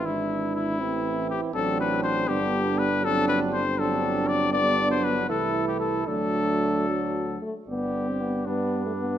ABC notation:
X:1
M:6/8
L:1/16
Q:3/8=79
K:Am
V:1 name="Trumpet"
E4 E6 G2 | [K:G] A2 B2 c2 G4 B2 | A2 B2 c2 A4 d2 | d3 c B2 A3 G A2 |
A8- A2 z2 | G6 D6 |]
V:2 name="Flugelhorn"
E6 E6 | [K:G] D6 D6 | D6 D6 | D6 E6 |
D8- D2 z2 | d6 B6 |]
V:3 name="French horn"
D6 C6 | [K:G] C6 B,6 | C6 C6 | B,6 A,6 |
A,6 F,4 A,2 | B,3 C B,2 B,3 A, B,2 |]
V:4 name="Trombone" clef=bass
E,6 E,6 | [K:G] F,6 G,6 | F,6 F,6 | G,3 F,3 E,6 |
F,8- F,2 z2 | G,12 |]
V:5 name="Bass trombone" clef=bass
^G,,,6 A,,,6 | [K:G] A,,,6 G,,,6- | G,,,12- | G,,,6 C,,6 |
D,,8- D,,2 z2 | G,,,6 G,,6 |]